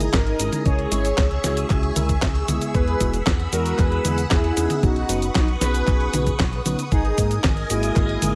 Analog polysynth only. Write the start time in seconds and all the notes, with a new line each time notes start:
Already playing: G#4
0.14 D#4 A#4
0.66 G#4 C#5
2.75 G#4 B4
3.53 F#4 A#4
3.79 G#4 B4
4.31 E4 G#4
4.83 D#4 F#4
5.35 D#4 F#4
5.61 G#4 B4
6.92 D#4 G#4
7.70 E4 G#4